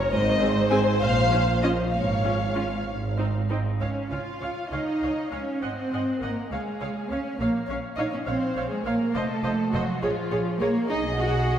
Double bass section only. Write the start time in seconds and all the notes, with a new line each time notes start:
0.11 G#1
1.00 A#1
1.93 G#1
2.86 G#1
3.81 C#2
4.11 C#2
4.41 C#2
4.72 C#2
5.02 C#2
5.32 C#2
5.62 G#1
5.92 G#1
6.22 G#1
6.52 C#2
6.81 C#2
7.11 C#2
7.39 A#1
7.69 A#1
7.98 A#1
8.27 A#1
8.56 A#1
8.85 A#1
9.15 F1
9.44 F1
9.74 F1
10.03 A#1
10.31 A#1
10.61 A#1
10.90 B1